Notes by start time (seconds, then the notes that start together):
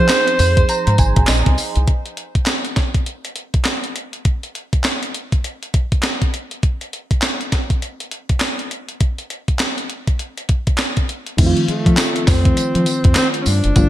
Already playing: F3 C4 D#4 G#4 C5
0.09 snare, clap, closed hi-hat, tambourine
0.28 closed hi-hat
0.39 F2 C6, open hi-hat, tambourine
0.57 kick, closed hi-hat
0.69 A#5, closed hi-hat, tambourine
0.87 G#2, closed hi-hat
0.98 G#1 G#5, kick, closed hi-hat, tambourine
1.16 G#1, kick, closed hi-hat
1.27 A#1 D#5, snare, clap, closed hi-hat, tambourine
1.46 C2, kick, closed hi-hat
1.58 open hi-hat, tambourine
1.76 C2, closed hi-hat
1.87 kick, closed hi-hat
2.06 closed hi-hat
2.17 closed hi-hat
2.35 kick, closed hi-hat
2.46 snare, clap, closed hi-hat
2.65 closed hi-hat
2.76 kick, snare, closed hi-hat
2.95 kick, closed hi-hat
3.06 closed hi-hat
3.25 closed hi-hat
3.36 closed hi-hat
3.54 kick, closed hi-hat
3.65 snare, clap, closed hi-hat
3.84 closed hi-hat
3.96 closed hi-hat
4.13 closed hi-hat
4.25 kick, closed hi-hat
4.43 closed hi-hat
4.55 closed hi-hat
4.73 kick, closed hi-hat
4.84 snare, clap, closed hi-hat
5.03 closed hi-hat
5.14 closed hi-hat
5.32 kick, closed hi-hat
5.44 closed hi-hat
5.63 closed hi-hat
5.74 kick, closed hi-hat
5.92 kick, closed hi-hat
6.03 snare, clap, closed hi-hat
6.22 kick, closed hi-hat
6.34 closed hi-hat
6.51 closed hi-hat
6.63 kick, closed hi-hat
6.81 closed hi-hat
6.93 closed hi-hat
7.11 kick, closed hi-hat
7.22 snare, clap, closed hi-hat
7.41 closed hi-hat
7.52 kick, snare, closed hi-hat
7.70 kick, closed hi-hat
7.82 closed hi-hat
8.00 closed hi-hat
8.11 closed hi-hat
8.29 kick, closed hi-hat
8.40 snare, clap, closed hi-hat
8.59 closed hi-hat
8.71 closed hi-hat
8.89 closed hi-hat
9.00 kick, closed hi-hat
9.18 closed hi-hat
9.30 closed hi-hat
9.48 kick, closed hi-hat
9.59 snare, clap, closed hi-hat
9.78 closed hi-hat
9.90 closed hi-hat
10.07 kick, closed hi-hat
10.19 closed hi-hat
10.37 closed hi-hat
10.49 kick, closed hi-hat
10.67 kick, closed hi-hat
10.78 snare, clap, closed hi-hat
10.97 kick, closed hi-hat
11.09 closed hi-hat
11.27 closed hi-hat
11.37 F2 D#3 F3 A3 C4 E4, kick, closed hi-hat, crash, tambourine
11.46 F4
11.57 closed hi-hat
11.68 A3, muted fingered electric bass stroke, closed hi-hat
11.86 F3, kick, closed hi-hat
11.97 snare, clap, closed hi-hat, tambourine
12.16 closed hi-hat
12.27 F2 C4, kick, snare, open hi-hat, tambourine
12.45 kick, closed hi-hat
12.57 muted fingered electric bass stroke, closed hi-hat, tambourine
12.75 F3, closed hi-hat
12.86 closed hi-hat, tambourine
13.04 F2, kick, closed hi-hat
13.15 C4, snare, clap, closed hi-hat, tambourine
13.34 closed hi-hat
13.41 C#4
13.46 G2 D4, open hi-hat, tambourine
13.64 F#1, closed hi-hat
13.76 G1 D3 F3 G3 A#3 F4, kick, closed hi-hat, tambourine